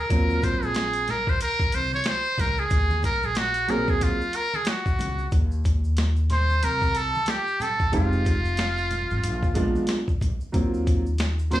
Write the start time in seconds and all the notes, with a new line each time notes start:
0.00 A#4
0.09 D#2 F#3 A#3 C4 F4, kick, closed hi-hat, shaker
0.30 high conga, shaker
0.42 C5, kick, closed hi-hat, low conga, shaker
0.62 A#1 G#4, shaker
0.74 snare, closed hi-hat, shaker
0.93 closed hi-hat, shaker
1.08 A#4, snare, closed hi-hat, low conga, shaker
1.27 C5, kick, high conga, shaker
1.41 A#4, closed hi-hat, shaker
1.60 kick, shaker
1.72 C2 C5, closed hi-hat, shaker
1.93 C#5, high conga, shaker
2.04 C5, snare, closed hi-hat, shaker
2.25 shaker
2.38 C#2 A#4, kick, closed hi-hat, low conga, shaker
2.57 G#4, shaker
2.70 D#2, kick, closed hi-hat, shaker
2.90 high conga, shaker
3.03 A#4, kick, closed hi-hat, low conga, shaker
3.23 A#1 G#4, shaker
3.35 F#4, snare, closed hi-hat, shaker
3.54 closed hi-hat, shaker
3.68 F#3 A#3 C4 G#4 A#4, closed hi-hat, low conga, shaker
3.88 G#4, kick, high conga, shaker
4.01 F4, kick, closed hi-hat, shaker
4.21 shaker
4.33 A#4, closed hi-hat, shaker
4.54 G#4, high conga, shaker
4.65 F#4, snare, closed hi-hat, shaker
4.86 kick, shaker
4.99 C#2, closed hi-hat, low conga, shaker
5.19 shaker
5.31 D#2, kick, closed hi-hat, shaker
5.51 shaker
5.64 kick, closed hi-hat, high conga, shaker
5.84 shaker
5.97 snare, closed hi-hat, shaker
6.16 shaker
6.30 C5 C6, snare, closed hi-hat, low conga, shaker
6.50 high conga, shaker
6.63 C2 A#4 A#5, closed hi-hat, shaker
6.82 kick, shaker
6.95 A4 A5, closed hi-hat, shaker
7.15 high conga, shaker
7.26 G4 G5, snare, closed hi-hat, shaker
7.47 shaker
7.60 A4 A5, closed hi-hat, low conga, shaker
7.80 kick, shaker
7.92 F1 G#3 C4 D#4 F4 G4 F5, kick, closed hi-hat, shaker
8.12 shaker
8.25 kick, closed hi-hat, high conga, shaker
8.45 shaker
8.57 snare, closed hi-hat, shaker
8.78 shaker
8.91 closed hi-hat, low conga, shaker
9.11 G#1, high conga, shaker
9.23 A#1, closed hi-hat, shaker
9.43 kick, shaker
9.54 G#3 B3 D4 F4, kick, closed hi-hat, shaker
9.76 high conga, shaker
9.87 snare, closed hi-hat, shaker
10.08 kick, shaker
10.21 kick, closed hi-hat, low conga, shaker
10.40 shaker
10.52 D#2 F#3 A#3 C4 F4, kick, closed hi-hat, shaker
10.74 shaker
10.86 kick, closed hi-hat, high conga, shaker
11.06 shaker
11.18 snare, closed hi-hat, shaker
11.39 shaker
11.50 F#3 A#3 C4 F4 C5 C6, snare, closed hi-hat, low conga, shaker